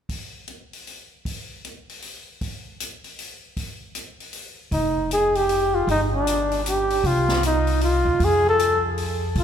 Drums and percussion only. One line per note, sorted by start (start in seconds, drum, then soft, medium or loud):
0.09 kick soft
0.09 open hi-hat soft
0.48 closed hi-hat soft
0.73 open hi-hat soft
0.87 open hi-hat soft
1.25 kick soft
1.25 open hi-hat soft
1.65 closed hi-hat soft
1.89 open hi-hat soft
2.02 open hi-hat soft
2.41 kick soft
2.41 open hi-hat soft
2.80 closed hi-hat soft
3.04 open hi-hat soft
3.19 open hi-hat soft
3.57 kick soft
3.57 open hi-hat soft
3.95 closed hi-hat soft
4.20 open hi-hat soft
4.33 open hi-hat soft
4.72 kick soft
4.72 open hi-hat soft
5.11 closed hi-hat soft
5.35 open hi-hat soft
5.49 open hi-hat soft
5.88 kick soft
5.88 open hi-hat soft
6.27 closed hi-hat soft
6.52 open hi-hat soft
6.66 closed hi-hat soft
6.90 open hi-hat soft
7.04 kick soft
7.04 open hi-hat soft
7.28 snare soft
7.43 closed hi-hat soft
7.67 open hi-hat soft
7.81 open hi-hat soft
8.20 kick soft
8.20 open hi-hat soft
8.59 closed hi-hat soft
8.98 open hi-hat soft
9.35 kick soft
9.35 open hi-hat soft